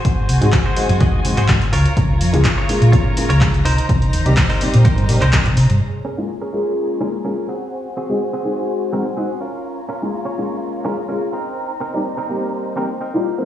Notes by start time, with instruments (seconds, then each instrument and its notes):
Already playing: clean electric guitar F#4 G#4 C5, violin section F#4 C5 G#5
0.05 fingered electric bass G#1, kick, closed hi-hat
0.29 fingered electric bass C2, open hi-hat
0.41 fingered electric bass G#1, grand piano G#3 C4 D#4 F#4 G#4, closed hi-hat
0.52 kick, clap, closed hi-hat
0.66 clean electric guitar F#4 G#4 C5
0.76 grand piano G#3 C4 D#4 F#4 G#4, muted fingered electric bass stroke, open hi-hat
0.89 fingered electric bass F#2, muted clean electric guitar stroke, closed hi-hat
1.00 clean electric guitar F#4 G#4 D#5, kick, closed hi-hat
1.13 fingered electric bass D#2
1.25 fingered electric bass F#1, grand piano G#3 C4 D#4 F#4 G#4, open hi-hat
1.37 fingered electric bass G#1, clean electric guitar F#4 G#4 C5, closed hi-hat
1.48 grand piano G#3 C4 D#4 F#4 G#4, kick, clap, closed hi-hat
1.62 closed hi-hat
1.72 fingered electric bass C#2, violin section F4 C#5 A#5, clean electric guitar F4 A#4 C#5, open hi-hat
1.86 closed hi-hat
1.97 fingered electric bass C#2, kick, closed hi-hat
2.21 fingered electric bass F2, open hi-hat
2.33 fingered electric bass C#2, grand piano G#3 A#3 C#4 F4 G#4, closed hi-hat
2.44 kick, clap, closed hi-hat
2.57 clean electric guitar F4 A#4 C#5
2.69 grand piano G#3 A#3 C#4 F4 G#4, muted fingered electric bass stroke, open hi-hat
2.81 fingered electric bass A#2, muted clean electric guitar stroke, closed hi-hat
2.92 clean electric guitar F4 A#4 C#5, kick, closed hi-hat
3.17 grand piano G#3 A#3 C#4 F4 G#4, open hi-hat
3.29 fingered electric bass C#2, clean electric guitar F4 A#4 C#5, closed hi-hat
3.41 grand piano G#3 A#3 C#4 F4 G#4, kick, clap, closed hi-hat
3.54 closed hi-hat
3.65 fingered electric bass C2, clean electric guitar D#4 A#4 C5, violin section D#4 C5, open hi-hat
3.78 closed hi-hat
3.89 fingered electric bass C2, kick, closed hi-hat
4.02 closed hi-hat
4.13 fingered electric bass D#2, open hi-hat
4.25 fingered electric bass C2, grand piano G3 A#3 C4 D#4 G4, closed hi-hat
4.37 kick, clap, closed hi-hat
4.49 clean electric guitar D#4 A#4 C5, open hi-hat
4.61 grand piano G3 A#3 C4 D#4 G4, muted fingered electric bass stroke, open hi-hat
4.74 fingered electric bass A#2, muted clean electric guitar stroke, closed hi-hat
4.85 clean electric guitar D#4 A#4 C5, kick, closed hi-hat
4.98 fingered electric bass G2, closed hi-hat
5.08 fingered electric bass A#1, grand piano G3 A#3 C4 D#4 G4, open hi-hat
5.21 fingered electric bass C2, clean electric guitar D#4 A#4 C5, clap, closed hi-hat
5.33 grand piano G3 A#3 C4 D#4 G4, kick, clap, closed hi-hat
5.46 fingered electric bass C2, kick, closed hi-hat
5.57 fingered electric bass C3, muted clean electric guitar stroke, open hi-hat
5.70 fingered electric bass G2, closed hi-hat
5.81 violin section G#4 C#5 A#5
6.05 clean electric guitar C#4 G#4 A#4
6.17 grand piano G#3 A#3 C#4 F4 G#4
6.29 muted clean electric guitar stroke
6.41 clean electric guitar C#4 G#4 A#4
6.53 grand piano G#3 A#3 C#4 F4 G#4
7.00 grand piano G#3 A#3 C#4 F4 G#4, clean electric guitar C#4 G#4 A#4
7.24 grand piano G#3 A#3 C#4 F4 G#4, clean electric guitar C#4 G#4 A#4
7.49 clean electric guitar C4 F#4 G#4, violin section F#4 C5 G#5
7.97 clean electric guitar C4 F#4 G#4
8.09 grand piano G#3 C4 D#4 F#4 G#4
8.21 muted clean electric guitar stroke
8.33 clean electric guitar C4 F#4 G#4
8.44 grand piano G#3 C4 D#4 F#4 G#4
8.92 grand piano G#3 C4 D#4 F#4 G#4, clean electric guitar C4 F#4 A#4
9.17 grand piano G#3 C4 D#4 F#4 G#4, clean electric guitar C4 F#4 G#4 F#5
9.40 clean electric guitar C#4 F4 A#4 F5, violin section F4 C#5 A#5
9.89 clean electric guitar C#4 F4 A#4
10.02 grand piano G#3 A#3 C#4 F4 G#4
10.13 muted clean electric guitar stroke
10.25 clean electric guitar C#4 F4 C#5
10.37 grand piano G#3 A#3 C#4 F4 G#4
10.85 grand piano G#3 A#3 C#4 F4 G#4, clean electric guitar C#4 F4 A#4
11.09 grand piano G#3 A#3 C#4 F4 G#4, clean electric guitar C#4 F4 A#4
11.33 clean electric guitar C4 D#4 A#4, violin section D#4 C5
11.80 clean electric guitar C4 D#4 A#4
11.94 grand piano G3 A#3 C4 D#4 G4
12.05 muted clean electric guitar stroke
12.17 clean electric guitar C4 D#4 A#4
12.29 grand piano G3 A#3 C4 D#4 G4
12.77 grand piano G3 A#3 C4 D#4 G4, clean electric guitar C4 D#4 A#4
13.01 clean electric guitar C4 D#4 A#4
13.14 grand piano G3 A#3 C4 D#4 F4
13.38 grand piano G3 A#3 C4 D#4 C5